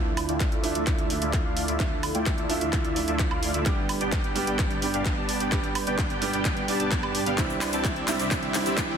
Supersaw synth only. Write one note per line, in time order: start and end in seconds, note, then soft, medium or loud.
0.00 0.10 A3 medium
0.00 0.10 E4 medium
0.00 0.10 F4 medium
0.00 0.10 D5 medium
0.00 0.10 E5 medium
0.29 0.49 A3 medium
0.29 0.49 E4 medium
0.29 0.49 F4 medium
0.29 0.49 D5 medium
0.29 0.49 G5 medium
0.52 0.72 A3 medium
0.52 0.72 E4 medium
0.52 0.72 F4 medium
0.52 0.72 D5 medium
0.52 0.72 E5 medium
0.75 0.84 A3 medium
0.75 0.84 E4 medium
0.75 0.84 F4 medium
0.75 0.84 D5 medium
0.75 0.84 E5 loud
0.87 0.97 A3 medium
0.87 0.97 E4 medium
0.87 0.97 F4 medium
0.87 0.97 D5 medium
0.87 0.97 E5 medium
0.98 1.15 A3 medium
0.98 1.15 E4 medium
0.98 1.15 F4 medium
0.98 1.15 D5 medium
0.98 1.15 E5 medium
1.22 1.42 A3 medium
1.22 1.42 E4 medium
1.22 1.42 F4 medium
1.22 1.42 D5 medium
1.22 1.42 E5 loud
1.45 1.65 A3 medium
1.45 1.65 E4 medium
1.45 1.65 F4 medium
1.45 1.65 D5 medium
1.45 1.65 F5 medium
1.68 1.78 A3 medium
1.68 1.78 E4 medium
1.68 1.78 F4 medium
1.68 1.78 D5 medium
1.68 1.78 E5 medium
1.80 1.96 A3 medium
1.80 1.96 E4 medium
1.80 1.96 F4 medium
1.80 1.96 D5 medium
1.80 1.96 E5 medium
2.15 2.35 A3 medium
2.15 2.35 E4 medium
2.15 2.35 F4 medium
2.15 2.35 D5 medium
2.15 2.35 G5 medium
2.38 2.58 A3 medium
2.38 2.58 E4 medium
2.38 2.58 F4 medium
2.38 2.58 D5 medium
2.38 2.58 E5 medium
2.61 2.70 A3 medium
2.61 2.70 E4 medium
2.61 2.70 F4 medium
2.61 2.70 D5 medium
2.61 2.70 E5 loud
2.73 2.83 A3 medium
2.73 2.83 E4 medium
2.73 2.83 F4 medium
2.73 2.83 D5 medium
2.73 2.83 E5 medium
2.84 3.01 A3 medium
2.84 3.01 E4 medium
2.84 3.01 F4 medium
2.84 3.01 D5 medium
2.84 3.01 E5 medium
3.08 3.28 A3 medium
3.08 3.28 E4 medium
3.08 3.28 F4 medium
3.08 3.28 D5 medium
3.08 3.28 E5 loud
3.31 3.51 A3 medium
3.31 3.51 E4 medium
3.31 3.51 F4 medium
3.31 3.51 D5 medium
3.31 3.51 F5 medium
3.54 3.64 A3 medium
3.54 3.64 E4 medium
3.54 3.64 F4 medium
3.54 3.64 D5 medium
3.54 3.64 E5 medium
3.66 3.82 B3 medium
3.66 3.82 D4 medium
3.66 3.82 G4 medium
3.66 3.82 D5 medium
3.66 3.82 G5 medium
4.01 4.21 B3 medium
4.01 4.21 D4 medium
4.01 4.21 G4 medium
4.01 4.21 D5 medium
4.01 4.21 G5 medium
4.24 4.45 B3 medium
4.24 4.45 D4 medium
4.24 4.45 G4 medium
4.24 4.45 D5 medium
4.24 4.45 G5 medium
4.47 4.56 B3 medium
4.47 4.56 D4 medium
4.47 4.56 G4 medium
4.47 4.56 D5 medium
4.47 4.56 G5 loud
4.59 4.69 B3 medium
4.59 4.69 D4 medium
4.59 4.69 G4 medium
4.59 4.69 D5 medium
4.59 4.69 G5 medium
4.71 4.87 B3 medium
4.71 4.87 D4 medium
4.71 4.87 G4 medium
4.71 4.87 D5 medium
4.71 4.87 G5 medium
4.94 5.14 B3 medium
4.94 5.14 D4 medium
4.94 5.14 G4 medium
4.94 5.14 D5 medium
4.94 5.14 F5 loud
5.17 5.37 B3 medium
5.17 5.37 D4 medium
5.17 5.37 G4 medium
5.17 5.37 D5 medium
5.17 5.37 A5 medium
5.40 5.50 B3 medium
5.40 5.50 D4 medium
5.40 5.50 G4 medium
5.40 5.50 D5 medium
5.40 5.50 G5 medium
5.52 5.68 B3 medium
5.52 5.68 D4 medium
5.52 5.68 G4 medium
5.52 5.68 D5 medium
5.52 5.68 G5 medium
5.87 6.07 B3 medium
5.87 6.07 D4 medium
5.87 6.07 G4 medium
5.87 6.07 D5 medium
5.87 6.07 G5 medium
6.10 6.31 B3 medium
6.10 6.31 D4 medium
6.10 6.31 G4 medium
6.10 6.31 D5 medium
6.10 6.31 G5 medium
6.33 6.42 B3 medium
6.33 6.42 D4 medium
6.33 6.42 G4 medium
6.33 6.42 D5 medium
6.33 6.42 G5 loud
6.45 6.55 B3 medium
6.45 6.55 D4 medium
6.45 6.55 G4 medium
6.45 6.55 D5 medium
6.45 6.55 G5 medium
6.57 6.66 B3 medium
6.57 6.66 D4 medium
6.57 6.66 G4 medium
6.57 6.66 D5 medium
6.57 6.66 G5 medium
6.68 6.78 B3 medium
6.68 6.78 D4 medium
6.68 6.78 G4 medium
6.68 6.78 D5 medium
6.68 6.78 A5 loud
6.80 7.00 B3 medium
6.80 7.00 D4 medium
6.80 7.00 G4 medium
6.80 7.00 D5 medium
6.80 7.00 A5 medium
7.03 7.19 B3 medium
7.03 7.19 D4 medium
7.03 7.19 G4 medium
7.03 7.19 D5 medium
7.03 7.19 A5 medium
7.26 7.35 B3 medium
7.26 7.35 D4 medium
7.26 7.35 G4 medium
7.26 7.35 D5 medium
7.26 7.35 F5 medium
7.38 7.54 C4 medium
7.38 7.54 E4 medium
7.38 7.54 G4 medium
7.38 7.54 D5 medium
7.38 7.54 E5 medium
7.73 7.93 C4 medium
7.73 7.93 E4 medium
7.73 7.93 G4 medium
7.73 7.93 D5 medium
7.73 7.93 A5 medium
7.96 8.17 C4 medium
7.96 8.17 E4 medium
7.96 8.17 G4 medium
7.96 8.17 D5 medium
7.96 8.17 E5 medium
8.19 8.28 C4 medium
8.19 8.28 E4 medium
8.19 8.28 G4 medium
8.19 8.28 D5 medium
8.19 8.28 E5 loud
8.31 8.41 C4 medium
8.31 8.41 E4 medium
8.31 8.41 G4 medium
8.31 8.41 D5 medium
8.31 8.41 E5 medium
8.43 8.59 C4 medium
8.43 8.59 E4 medium
8.43 8.59 G4 medium
8.43 8.59 D5 medium
8.43 8.59 E5 medium
8.66 8.86 C4 medium
8.66 8.86 E4 medium
8.66 8.86 G4 medium
8.66 8.86 D5 medium
8.66 8.86 E5 loud
8.89 8.97 C4 medium
8.89 8.97 E4 medium
8.89 8.97 G4 medium
8.89 8.97 D5 medium
8.89 8.97 G5 medium